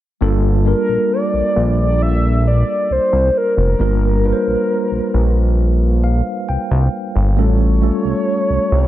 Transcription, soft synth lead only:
0.68 1.14 A#4 medium
1.13 1.79 D5 loud
1.80 2.04 D5 loud
2.02 2.49 E5 loud
2.47 2.94 D5 loud
2.92 3.39 C5 medium
3.37 3.58 A#4 medium
3.60 6.23 A#4 loud
7.39 8.88 C#5 loud

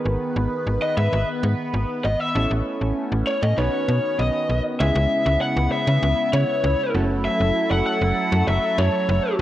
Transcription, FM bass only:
0.06 0.17 G#1 medium
0.36 0.47 G#1 loud
0.67 0.78 G#1 loud
0.97 1.09 G#2 loud
1.13 1.24 G#1 loud
1.43 1.55 G#2 loud
1.74 1.85 G#1 loud
2.05 2.16 G#1 loud
2.35 2.47 A1 loud
2.51 2.62 A1 loud
2.81 2.92 A1 medium
3.12 3.23 A1 loud
3.43 3.54 A2 loud
3.58 3.69 B1 loud
3.88 4.00 B2 medium
4.19 4.30 B1 loud
4.49 4.61 B1 medium
4.80 4.91 C#2 loud
4.95 5.07 C#2 loud
5.26 5.37 C#2 loud
5.57 5.68 C#2 loud
5.87 5.98 C#3 medium
6.03 6.14 C#2 loud
6.33 6.44 C#3 loud
6.64 6.75 C#2 loud
6.94 7.28 F#1 loud
7.40 7.52 F#1 medium
7.71 7.82 F#1 loud
8.01 8.13 F#1 loud
8.32 8.43 F#2 loud
8.47 8.59 F#1 loud
8.78 8.89 F#2 loud
9.09 9.20 F#1 loud

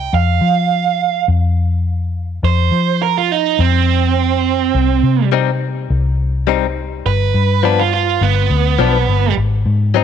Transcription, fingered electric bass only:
0.13 0.39 F2 medium
0.41 1.24 F3 medium
1.28 2.40 F2 medium
2.43 2.70 F2 loud
2.71 3.55 F3 medium
3.59 4.70 F2 medium
4.74 5.01 C2 medium
5.03 5.86 C3 medium
5.90 7.02 C2 medium
7.06 7.32 G1 medium
7.34 8.17 G2 medium
8.21 8.48 G1 medium
8.50 8.76 D2 medium
8.79 9.05 B1 medium
9.08 9.34 G1 medium
9.37 9.64 G#1 medium
9.66 10.04 G#2 medium

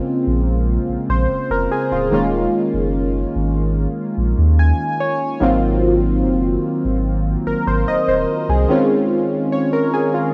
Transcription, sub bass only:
0.27 0.78 A#1 medium
0.89 0.97 A#1 soft
1.09 1.26 A#1 loud
1.30 1.38 F1 soft
1.50 1.67 F1 medium
1.91 2.08 D1 medium
2.12 2.46 D#1 loud
2.74 3.25 F#1 medium
3.35 3.86 G#1 medium
4.17 4.34 A#1 medium
4.38 4.72 D#2 loud
5.41 6.24 G#1 loud
6.23 6.57 F#1 medium
6.85 7.36 G#1 medium
7.46 7.54 G#1 soft
7.67 7.84 G#1 loud
7.87 7.95 D#1 soft
8.08 8.25 D#1 medium
8.49 8.66 C2 medium

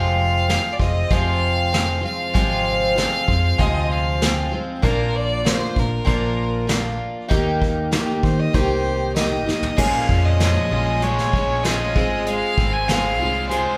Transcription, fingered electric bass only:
0.00 0.57 F1 medium
0.80 1.03 F1 medium
1.11 2.04 F1 medium
2.35 3.05 G#1 medium
3.28 3.51 F2 medium
3.59 4.52 D2 medium
4.83 5.53 A#1 medium
5.77 6.00 A#1 medium
6.07 7.00 A#1 medium
7.31 8.01 D#2 medium
8.24 8.47 D#3 medium
8.54 9.47 C2 medium
9.78 9.90 A#1 loud
10.09 10.56 F2 medium
10.71 11.18 A#1 medium
11.33 11.96 A#1 medium
11.96 12.42 G#1 medium
12.58 13.19 G#1 medium
13.19 13.65 C2 medium

